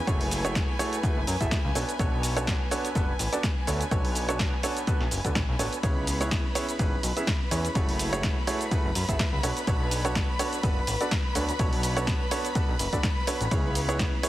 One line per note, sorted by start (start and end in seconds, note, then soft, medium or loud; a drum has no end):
0.00 5.82 B4 medium
0.00 5.84 G#5 medium
0.07 0.61 F#1 loud
0.07 0.41 A3 medium
0.07 0.41 E4 medium
0.07 0.41 F#4 medium
0.07 0.41 G#4 medium
0.07 0.41 C#5 loud
0.07 kick loud
0.07 closed hi-hat medium
0.07 shaker soft
0.21 open hi-hat medium
0.31 open hi-hat loud
0.31 shaker medium
0.45 0.68 A3 loud
0.45 0.68 E4 medium
0.45 0.68 F#4 medium
0.45 0.68 G#4 medium
0.45 0.68 C#5 loud
0.45 closed hi-hat medium
0.45 shaker soft
0.55 kick loud
0.55 snare loud
0.55 closed hi-hat medium
0.55 shaker soft
0.79 0.95 A3 loud
0.79 0.95 E4 medium
0.79 0.95 F#4 medium
0.79 0.95 G#4 medium
0.79 0.95 C#5 loud
0.79 open hi-hat loud
0.79 shaker medium
0.93 closed hi-hat medium
0.93 shaker soft
1.03 1.19 A3 medium
1.03 1.19 E4 medium
1.03 1.19 F#4 medium
1.03 1.19 G#4 medium
1.03 1.19 B4 loud
1.03 kick loud
1.03 closed hi-hat medium
1.03 shaker soft
1.17 1.24 F#1 medium
1.27 1.36 F#2 loud
1.27 open hi-hat loud
1.27 shaker medium
1.41 1.48 A1 medium
1.41 1.54 A3 medium
1.41 1.54 E4 medium
1.41 1.54 F#4 medium
1.41 1.54 G#4 medium
1.41 1.54 E5 medium
1.41 kick medium
1.41 closed hi-hat medium
1.41 shaker soft
1.51 kick loud
1.51 snare loud
1.51 closed hi-hat medium
1.51 shaker soft
1.65 1.72 C#2 medium
1.75 1.84 B1 medium
1.75 1.91 B3 medium
1.75 1.91 D4 medium
1.75 1.91 F#4 medium
1.75 1.91 A4 medium
1.75 1.91 C#5 medium
1.75 open hi-hat loud
1.75 shaker medium
1.89 closed hi-hat medium
1.89 shaker soft
1.99 2.53 B1 loud
1.99 2.33 B3 medium
1.99 2.33 D4 medium
1.99 2.33 F#4 medium
1.99 2.33 A4 medium
1.99 2.33 C#5 loud
1.99 kick loud
1.99 closed hi-hat medium
1.99 shaker soft
2.23 open hi-hat loud
2.23 shaker medium
2.37 2.60 B3 loud
2.37 2.60 D4 medium
2.37 2.60 F#4 medium
2.37 2.60 A4 medium
2.37 2.60 C#5 loud
2.37 closed hi-hat medium
2.37 shaker soft
2.47 kick loud
2.47 snare loud
2.47 closed hi-hat medium
2.47 shaker soft
2.71 2.87 B3 loud
2.71 2.87 D4 medium
2.71 2.87 F#4 medium
2.71 2.87 A4 medium
2.71 2.87 C#5 loud
2.71 open hi-hat loud
2.71 shaker medium
2.85 closed hi-hat medium
2.85 shaker soft
2.95 3.12 F#1 loud
2.95 3.11 B3 medium
2.95 3.11 D4 medium
2.95 3.11 F#4 medium
2.95 3.11 A4 medium
2.95 3.11 B4 loud
2.95 kick loud
2.95 closed hi-hat medium
2.95 shaker soft
3.19 3.28 A1 medium
3.19 open hi-hat loud
3.19 shaker medium
3.33 3.46 B3 medium
3.33 3.46 D4 medium
3.33 3.46 F#4 medium
3.33 3.46 A4 medium
3.33 3.46 D5 medium
3.33 closed hi-hat medium
3.33 shaker soft
3.43 kick loud
3.43 snare loud
3.43 closed hi-hat medium
3.43 shaker soft
3.67 3.84 D2 loud
3.67 3.83 B3 medium
3.67 3.83 D4 medium
3.67 3.83 F#4 medium
3.67 3.83 A4 medium
3.67 3.83 C#5 medium
3.67 open hi-hat loud
3.67 shaker medium
3.81 closed hi-hat medium
3.81 shaker soft
3.91 4.45 B1 loud
3.91 4.25 B3 medium
3.91 4.25 D4 medium
3.91 4.25 F#4 medium
3.91 4.25 A4 medium
3.91 4.25 C#5 loud
3.91 kick loud
3.91 closed hi-hat medium
3.91 shaker soft
4.05 open hi-hat medium
4.15 open hi-hat loud
4.15 shaker medium
4.29 4.52 B3 loud
4.29 4.52 D4 medium
4.29 4.52 F#4 medium
4.29 4.52 A4 medium
4.29 4.52 C#5 loud
4.29 closed hi-hat medium
4.29 shaker soft
4.39 kick loud
4.39 snare loud
4.39 closed hi-hat medium
4.39 shaker soft
4.63 4.79 B3 loud
4.63 4.79 D4 medium
4.63 4.79 F#4 medium
4.63 4.79 A4 medium
4.63 4.79 C#5 loud
4.63 open hi-hat loud
4.63 shaker medium
4.77 closed hi-hat medium
4.77 shaker soft
4.87 5.03 B3 medium
4.87 5.03 D4 medium
4.87 5.03 F#4 medium
4.87 5.03 A4 medium
4.87 5.03 B4 loud
4.87 kick loud
4.87 closed hi-hat medium
4.87 shaker soft
5.01 5.08 B1 medium
5.01 snare soft
5.11 5.20 F#1 medium
5.11 open hi-hat loud
5.11 shaker medium
5.25 5.32 D2 medium
5.25 5.38 B3 medium
5.25 5.38 D4 medium
5.25 5.38 F#4 medium
5.25 5.38 A4 medium
5.25 5.38 D5 medium
5.25 kick medium
5.25 closed hi-hat medium
5.25 shaker soft
5.35 5.44 B1 medium
5.35 kick loud
5.35 snare loud
5.35 closed hi-hat medium
5.35 shaker soft
5.49 5.56 B1 medium
5.59 5.68 A1 loud
5.59 5.75 B3 medium
5.59 5.75 D4 medium
5.59 5.75 F#4 medium
5.59 5.75 A4 medium
5.59 5.75 C#5 medium
5.59 open hi-hat loud
5.59 shaker medium
5.73 closed hi-hat medium
5.73 shaker soft
5.83 6.37 C#2 loud
5.83 6.17 B3 medium
5.83 6.17 C#4 medium
5.83 6.17 E4 medium
5.83 6.17 G#4 medium
5.83 14.29 B4 medium
5.83 6.17 C#5 medium
5.83 14.29 B5 medium
5.83 kick loud
5.83 closed hi-hat medium
5.83 ride medium
5.83 shaker soft
6.07 open hi-hat loud
6.07 ride medium
6.07 shaker medium
6.21 6.44 B3 loud
6.21 6.44 C#4 medium
6.21 6.44 E4 medium
6.21 6.44 G#4 medium
6.21 6.44 C#5 loud
6.21 closed hi-hat medium
6.21 shaker soft
6.31 kick loud
6.31 snare loud
6.31 closed hi-hat medium
6.31 ride medium
6.31 shaker soft
6.55 6.71 B3 loud
6.55 6.71 C#4 medium
6.55 6.71 E4 medium
6.55 6.71 G#4 medium
6.55 6.71 C#5 loud
6.55 open hi-hat loud
6.55 ride medium
6.55 shaker medium
6.69 closed hi-hat medium
6.69 shaker soft
6.79 6.96 G#1 loud
6.79 6.95 B3 medium
6.79 6.95 C#4 medium
6.79 6.95 E4 medium
6.79 6.95 G#4 medium
6.79 6.95 B4 loud
6.79 kick loud
6.79 closed hi-hat medium
6.79 ride medium
6.79 shaker soft
7.03 7.12 B1 medium
7.03 open hi-hat loud
7.03 ride medium
7.03 shaker medium
7.17 7.30 B3 medium
7.17 7.30 C#4 medium
7.17 7.30 E4 medium
7.17 7.30 G#4 medium
7.17 7.30 E5 medium
7.17 closed hi-hat medium
7.17 shaker soft
7.27 kick loud
7.27 snare loud
7.27 closed hi-hat medium
7.27 ride medium
7.27 shaker soft
7.51 7.68 E2 loud
7.51 7.67 B3 medium
7.51 7.67 C#4 medium
7.51 7.67 E4 medium
7.51 7.67 G#4 medium
7.51 7.67 C#5 medium
7.51 open hi-hat loud
7.51 ride medium
7.51 shaker medium
7.65 closed hi-hat medium
7.65 shaker soft
7.75 8.29 F#1 loud
7.75 8.09 A3 medium
7.75 8.09 E4 medium
7.75 8.09 F#4 medium
7.75 8.09 G#4 medium
7.75 8.09 C#5 loud
7.75 kick loud
7.75 closed hi-hat medium
7.75 ride medium
7.75 shaker soft
7.89 open hi-hat medium
7.99 open hi-hat loud
7.99 ride medium
7.99 shaker medium
8.13 8.36 A3 loud
8.13 8.36 E4 medium
8.13 8.36 F#4 medium
8.13 8.36 G#4 medium
8.13 8.36 C#5 loud
8.13 closed hi-hat medium
8.13 shaker soft
8.23 kick loud
8.23 snare loud
8.23 closed hi-hat medium
8.23 ride medium
8.23 shaker soft
8.47 8.63 A3 loud
8.47 8.63 E4 medium
8.47 8.63 F#4 medium
8.47 8.63 G#4 medium
8.47 8.63 C#5 loud
8.47 open hi-hat loud
8.47 ride medium
8.47 shaker medium
8.61 closed hi-hat medium
8.61 shaker soft
8.71 8.87 A3 medium
8.71 8.87 E4 medium
8.71 8.87 F#4 medium
8.71 8.87 G#4 medium
8.71 8.87 B4 loud
8.71 kick loud
8.71 closed hi-hat medium
8.71 ride medium
8.71 shaker soft
8.85 8.92 F#1 loud
8.95 9.04 F#2 medium
8.95 open hi-hat loud
8.95 ride medium
8.95 shaker medium
9.09 9.16 A1 medium
9.09 9.22 A3 medium
9.09 9.22 E4 medium
9.09 9.22 F#4 medium
9.09 9.22 G#4 medium
9.09 9.22 E5 medium
9.09 kick medium
9.09 closed hi-hat medium
9.09 shaker soft
9.19 kick loud
9.19 snare loud
9.19 closed hi-hat medium
9.19 ride medium
9.19 shaker soft
9.33 9.40 C#2 medium
9.43 9.52 B1 medium
9.43 9.59 B3 medium
9.43 9.59 D4 medium
9.43 9.59 F#4 medium
9.43 9.59 A4 medium
9.43 9.59 C#5 medium
9.43 open hi-hat loud
9.43 ride medium
9.43 shaker medium
9.57 closed hi-hat medium
9.57 shaker soft
9.67 10.21 B1 loud
9.67 10.01 B3 medium
9.67 10.01 D4 medium
9.67 10.01 F#4 medium
9.67 10.02 A4 medium
9.67 10.02 C#5 loud
9.67 kick loud
9.67 closed hi-hat medium
9.67 ride medium
9.67 shaker soft
9.91 open hi-hat loud
9.91 ride medium
9.91 shaker medium
10.05 10.28 B3 loud
10.05 10.28 D4 medium
10.05 10.28 F#4 medium
10.05 10.28 A4 medium
10.05 10.28 C#5 loud
10.05 closed hi-hat medium
10.05 shaker soft
10.15 kick loud
10.15 snare loud
10.15 closed hi-hat medium
10.15 ride medium
10.15 shaker soft
10.39 10.55 B3 loud
10.39 10.55 D4 medium
10.39 10.55 F#4 medium
10.39 10.55 A4 medium
10.39 10.55 C#5 loud
10.39 open hi-hat loud
10.39 ride medium
10.39 shaker medium
10.53 closed hi-hat medium
10.53 shaker soft
10.63 10.80 F#1 loud
10.63 10.79 B3 medium
10.63 10.79 D4 medium
10.63 10.79 F#4 medium
10.63 10.79 A4 medium
10.63 10.79 B4 loud
10.63 kick loud
10.63 closed hi-hat medium
10.63 ride medium
10.63 shaker soft
10.87 10.96 A1 medium
10.87 open hi-hat loud
10.87 ride medium
10.87 shaker medium
11.01 11.14 B3 medium
11.01 11.14 D4 medium
11.01 11.14 F#4 medium
11.01 11.14 A4 medium
11.01 11.14 D5 medium
11.01 closed hi-hat medium
11.01 shaker soft
11.11 kick loud
11.11 snare loud
11.11 closed hi-hat medium
11.11 ride medium
11.11 shaker soft
11.35 11.52 D2 loud
11.35 11.51 B3 medium
11.35 11.51 D4 medium
11.35 11.51 F#4 medium
11.35 11.51 A4 medium
11.35 11.51 C#5 medium
11.35 open hi-hat loud
11.35 ride medium
11.35 shaker medium
11.49 closed hi-hat medium
11.49 shaker soft
11.59 12.13 B1 loud
11.59 11.93 B3 medium
11.59 11.93 D4 medium
11.59 11.93 F#4 medium
11.59 11.93 A4 medium
11.59 11.93 C#5 loud
11.59 kick loud
11.59 closed hi-hat medium
11.59 ride medium
11.59 shaker soft
11.73 open hi-hat medium
11.83 open hi-hat loud
11.83 ride medium
11.83 shaker medium
11.97 12.20 B3 loud
11.97 12.20 D4 medium
11.97 12.20 F#4 medium
11.97 12.20 A4 medium
11.97 12.20 C#5 loud
11.97 closed hi-hat medium
11.97 shaker soft
12.07 kick loud
12.07 snare loud
12.07 closed hi-hat medium
12.07 ride medium
12.07 shaker soft
12.31 12.47 B3 loud
12.31 12.47 D4 medium
12.31 12.47 F#4 medium
12.31 12.47 A4 medium
12.31 12.47 C#5 loud
12.31 open hi-hat loud
12.31 ride medium
12.31 shaker medium
12.45 closed hi-hat medium
12.45 shaker soft
12.55 12.71 B3 medium
12.55 12.71 D4 medium
12.55 12.71 F#4 medium
12.55 12.71 A4 medium
12.55 12.71 B4 medium
12.55 kick loud
12.55 closed hi-hat medium
12.55 ride medium
12.55 shaker soft
12.69 12.76 B1 loud
12.79 12.88 F#1 loud
12.79 open hi-hat loud
12.79 ride medium
12.79 shaker medium
12.93 13.00 D2 medium
12.93 13.06 B3 medium
12.93 13.06 D4 medium
12.93 13.06 F#4 medium
12.93 13.06 A4 medium
12.93 13.06 D5 medium
12.93 kick medium
12.93 closed hi-hat medium
12.93 shaker soft
13.03 kick loud
13.03 snare loud
13.03 closed hi-hat medium
13.03 ride medium
13.03 shaker soft
13.27 13.43 B3 medium
13.27 13.43 D4 medium
13.27 13.43 F#4 medium
13.27 13.43 A4 medium
13.27 13.43 C#5 medium
13.27 open hi-hat loud
13.27 ride medium
13.27 shaker medium
13.41 13.48 A1 medium
13.41 closed hi-hat medium
13.41 shaker soft
13.51 14.05 C#2 loud
13.51 13.85 B3 medium
13.51 13.85 C#4 medium
13.51 13.85 E4 medium
13.51 13.85 G#4 medium
13.51 13.85 C#5 loud
13.51 kick loud
13.51 closed hi-hat medium
13.51 ride medium
13.51 shaker soft
13.75 open hi-hat loud
13.75 ride medium
13.75 shaker medium
13.89 14.12 B3 loud
13.89 14.12 C#4 medium
13.89 14.12 E4 medium
13.89 14.12 G#4 medium
13.89 14.12 C#5 loud
13.89 closed hi-hat medium
13.89 shaker soft
13.99 kick loud
13.99 snare loud
13.99 closed hi-hat medium
13.99 ride medium
13.99 shaker soft
14.23 14.29 B3 loud
14.23 14.29 C#4 medium
14.23 14.29 E4 medium
14.23 14.29 G#4 medium
14.23 14.29 C#5 loud
14.23 open hi-hat loud
14.23 ride medium
14.23 shaker medium